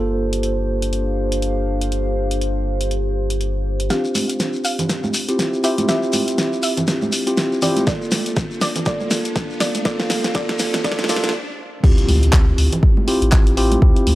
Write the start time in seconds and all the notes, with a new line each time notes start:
Already playing: G1 A#3 D4 F4 G4 A4 C5
0.33 closed hi-hat
0.43 closed hi-hat
0.65 F5
0.82 closed hi-hat
0.93 closed hi-hat
1.32 closed hi-hat
1.42 closed hi-hat
1.81 closed hi-hat
1.92 closed hi-hat
2.31 closed hi-hat
2.41 closed hi-hat
2.81 closed hi-hat
2.91 closed hi-hat
3.30 closed hi-hat
3.41 closed hi-hat
3.80 closed hi-hat
3.90 C4 D4 F4 G4 F5, snare, closed hi-hat, riser, shekere
4.04 shekere
4.15 open hi-hat, high conga, shekere
4.29 closed hi-hat, shekere
4.40 snare, closed hi-hat, shekere
4.53 shekere
4.64 F5, open hi-hat, shekere
4.77 E5, closed hi-hat, low conga, shekere
4.89 snare, closed hi-hat, shekere
5.04 high conga, shekere
5.14 open hi-hat, shekere
5.28 C4 E4 F4 G4, closed hi-hat, shekere
5.39 snare, closed hi-hat, shekere
5.53 shekere
5.64 C4 E4 F4 G4 E5, open hi-hat, shekere
5.78 closed hi-hat, high conga, shekere
5.88 C4 E4 F4 G4 E5, snare, closed hi-hat, shekere
6.03 shekere
6.13 open hi-hat, high conga, shekere
6.28 closed hi-hat, shekere
6.38 snare, closed hi-hat, shekere
6.53 shekere
6.63 E5, open hi-hat, shekere
6.77 closed hi-hat, low conga, shekere
6.87 snare, closed hi-hat, shekere
7.02 high conga, shekere
7.12 open hi-hat, shekere
7.27 C4 E4 F4 G4, closed hi-hat, shekere
7.37 snare, closed hi-hat, shekere
7.52 shekere
7.62 C4 E4 F4 G4 D5, open hi-hat, low conga, shekere
7.77 closed hi-hat, high conga, shekere
7.87 A#3 D4 D5, kick, snare, closed hi-hat, shekere
8.02 shekere
8.11 snare, open hi-hat, high conga, shekere
8.26 closed hi-hat, shekere
8.37 kick, snare, closed hi-hat, shekere
8.51 shekere
8.61 D5, snare, open hi-hat, shekere
8.76 closed hi-hat, low conga, shekere
8.86 A#3 F4 A4 D5, kick, snare, closed hi-hat, shekere
9.00 high conga, shekere
9.10 F5, snare, open hi-hat, shekere
9.25 closed hi-hat, shekere
9.36 kick, snare, closed hi-hat, shekere
9.51 shekere
9.60 D5, snare, open hi-hat, shekere
9.74 closed hi-hat, high conga, shekere
9.85 A#3 F4 A4 D5, kick, snare, closed hi-hat, shekere
10.00 snare, shekere
10.10 snare, open hi-hat, high conga, shekere
10.24 snare, closed hi-hat, shekere
10.34 A#3 F4 A4 D5, kick, snare, closed hi-hat, shekere
10.49 snare, shekere
10.59 snare, open hi-hat, shekere
10.74 snare, closed hi-hat, low conga, shekere
10.84 A#3 F4 A4 D5, kick, snare, closed hi-hat, shekere
10.92 snare
10.99 snare, high conga, shekere
11.04 snare
11.09 A#3 F4 A4 D5, snare, open hi-hat, shekere
11.16 snare
11.24 snare, closed hi-hat, shekere
11.29 snare
11.83 D2 C4 E4 F4 G4, kick, crash, impact
11.98 closed hi-hat
12.08 D2, open hi-hat, high conga
12.23 closed hi-hat
12.33 kick, clap
12.58 D2, open hi-hat
12.72 closed hi-hat, low conga
12.83 kick
12.97 high conga
13.07 C4 E4 F4 G4, open hi-hat
13.22 A1, closed hi-hat
13.32 kick, clap
13.47 closed hi-hat
13.57 C4 E4 F4 G4, open hi-hat
13.63 E5
13.72 closed hi-hat, high conga
13.82 D2 C4 E4 F4 G4, kick
13.96 closed hi-hat
14.07 D2, open hi-hat, high conga